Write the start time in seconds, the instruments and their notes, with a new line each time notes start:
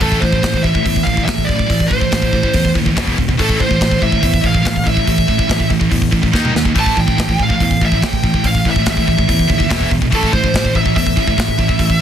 0.01 picked electric bass A1, distorted electric guitar A2 E3 A3, lead electric guitar A4, kick, open hi-hat
0.12 kick
0.20 picked electric bass A1, distorted electric guitar A2 E3, lead electric guitar C5, kick
0.32 distorted electric guitar A2 E3, kick
0.41 picked electric bass A1, distorted electric guitar A2 E3, kick, snare, open hi-hat
0.53 distorted electric guitar A2 E3, kick
0.63 picked electric bass A1, distorted electric guitar A2 E3, lead electric guitar E5, kick
0.74 distorted electric guitar A2 E3, kick
0.82 picked electric bass E2, distorted electric guitar A2 E3, kick
0.86 open hi-hat
0.96 kick
1.03 picked electric bass A1, distorted electric guitar A2 E3, lead electric guitar F5, kick
1.13 distorted electric guitar A2 E3, kick
1.24 distorted electric guitar A2 E3, lead electric guitar E5, kick
1.28 picked electric bass A1, snare, open hi-hat
1.38 kick
1.45 distorted electric guitar A2 E3, lead electric guitar D5
1.49 picked electric bass A1, kick
1.56 distorted electric guitar A2 E3, kick
1.66 picked electric bass A1, distorted electric guitar A2 E3, kick, open hi-hat
1.80 kick
1.88 picked electric bass A1, distorted electric guitar A2 E3, lead electric guitar C5, kick
2.00 distorted electric guitar A2 E3, kick
2.11 picked electric bass A1, distorted electric guitar A2 E3, kick, snare, open hi-hat
2.22 distorted electric guitar A2 E3, kick
2.33 picked electric bass A1, distorted electric guitar A2 E3, kick
2.43 distorted electric guitar A2 E3, kick
2.53 picked electric bass E2, distorted electric guitar A2 E3, kick, open hi-hat
2.65 kick
2.74 picked electric bass D#2, distorted electric guitar A2 E3, kick
2.85 distorted electric guitar A2 E3, kick
2.95 picked electric bass E1, distorted electric guitar E2 B2 E3, kick, snare, open hi-hat
3.07 kick
3.17 picked electric bass E1, distorted electric guitar E2 B2, kick
3.28 distorted electric guitar E2 B2, kick
3.37 picked electric bass A1, distorted electric guitar A2 E3 A3, lead electric guitar A4, kick, open hi-hat
3.49 kick
3.59 picked electric bass A1, distorted electric guitar A2 E3, lead electric guitar C5, kick
3.69 distorted electric guitar A2 E3, kick
3.79 picked electric bass A1, distorted electric guitar A2 E3, kick, snare, open hi-hat
3.90 distorted electric guitar A2 E3, kick
3.98 picked electric bass A1, distorted electric guitar A2 E3, kick
4.03 distorted electric guitar A2 E3, lead electric guitar E5
4.09 distorted electric guitar A2 E3, kick
4.20 picked electric bass E2, distorted electric guitar A2 E3, kick, open hi-hat
4.34 kick
4.41 picked electric bass A1, distorted electric guitar A2 E3, kick
4.46 lead electric guitar F5
4.52 distorted electric guitar A2 E3, kick
4.63 picked electric bass A1, distorted electric guitar A2 E3, kick, open hi-hat
4.67 snare
4.76 kick
4.84 picked electric bass A1, distorted electric guitar A2 E3, kick
4.88 lead electric guitar E5
4.94 distorted electric guitar A2 E3, kick
5.04 picked electric bass A1, distorted electric guitar A2 E3, kick, open hi-hat
5.18 kick
5.27 picked electric bass A1, distorted electric guitar A2 E3, kick
5.38 distorted electric guitar A2 E3, kick
5.49 picked electric bass A1, distorted electric guitar A2 E3, kick, snare, open hi-hat
5.59 distorted electric guitar A2 E3, kick
5.70 picked electric bass A1, distorted electric guitar A2 E3, kick
5.80 distorted electric guitar A2 E3, kick
5.91 picked electric bass E2, distorted electric guitar A2 E3, kick, open hi-hat
6.02 kick
6.11 picked electric bass A1, distorted electric guitar A2 E3, kick
6.22 distorted electric guitar A2 E3, kick
6.33 picked electric bass D#2, distorted electric guitar D#3 A#3 D#4, kick, snare
6.45 mid tom
6.54 picked electric bass D#2, distorted electric guitar D#3 A#3, snare
6.65 distorted electric guitar D#3 A#3, kick
6.74 picked electric bass A1, distorted electric guitar A2 E3 A3, kick, open hi-hat
6.79 lead electric guitar A5
6.86 kick
6.96 picked electric bass A1, distorted electric guitar A2 E3, lead electric guitar G5, kick
7.06 distorted electric guitar A2 E3, kick
7.17 picked electric bass A1, distorted electric guitar A2 E3, kick, snare, open hi-hat
7.29 distorted electric guitar A2 E3, kick
7.38 picked electric bass A1, distorted electric guitar A2 E3, kick
7.43 lead electric guitar F5
7.49 distorted electric guitar A2 E3, kick
7.60 picked electric bass E2, distorted electric guitar A2 E3, kick, open hi-hat
7.71 kick
7.81 picked electric bass A1, distorted electric guitar A2 E3, lead electric guitar E5, kick
7.92 distorted electric guitar A2 E3, kick
8.02 picked electric bass A1, distorted electric guitar A2 E3, lead electric guitar G5, kick, snare, open hi-hat
8.13 kick
8.23 picked electric bass A1, distorted electric guitar A2 E3, kick
8.34 distorted electric guitar A2 E3, kick
8.44 picked electric bass A1, distorted electric guitar A2 E3, lead electric guitar F5, kick, open hi-hat
8.55 kick
8.65 picked electric bass A1, distorted electric guitar A2 E3, kick
8.70 lead electric guitar E5
8.76 distorted electric guitar A2 E3, kick
8.86 picked electric bass A1, distorted electric guitar A2 E3, kick, snare, open hi-hat
8.90 lead electric guitar E5
8.97 distorted electric guitar A2 E3, kick
9.08 picked electric bass A1, distorted electric guitar A2 E3, kick
9.18 distorted electric guitar A2 E3, kick
9.28 picked electric bass E2, distorted electric guitar A2 E3, kick, open hi-hat
9.39 kick
9.48 picked electric bass D#2, distorted electric guitar A2 E3, kick
9.58 distorted electric guitar A2 E3, kick
9.69 picked electric bass E1, distorted electric guitar E2 B2 E3, kick, snare, open hi-hat
9.81 kick
9.90 picked electric bass E1, distorted electric guitar E2 B2, kick
10.01 distorted electric guitar E2 B2, kick
10.11 picked electric bass A1, distorted electric guitar A2 E3 A3, kick, open hi-hat
10.15 lead electric guitar A4
10.23 kick
10.32 picked electric bass A1, distorted electric guitar A2 E3, lead electric guitar C5, kick
10.43 distorted electric guitar A2 E3, kick
10.54 picked electric bass A1, distorted electric guitar A2 E3, kick, snare, open hi-hat
10.63 distorted electric guitar A2 E3, kick
10.75 picked electric bass A1, distorted electric guitar A2 E3, lead electric guitar E5, kick
10.85 distorted electric guitar A2 E3, kick
10.96 picked electric bass E2, distorted electric guitar A2 E3, lead electric guitar E5, kick, open hi-hat
11.07 kick
11.17 picked electric bass A1, distorted electric guitar A2 E3, kick
11.27 distorted electric guitar A2 E3, kick
11.38 picked electric bass A1, distorted electric guitar A2 E3, kick, snare, open hi-hat
11.48 kick
11.58 picked electric bass A1, distorted electric guitar A2 E3, kick
11.68 distorted electric guitar A2 E3, kick
11.79 picked electric bass A1, distorted electric guitar A2 E3, kick, open hi-hat
11.90 kick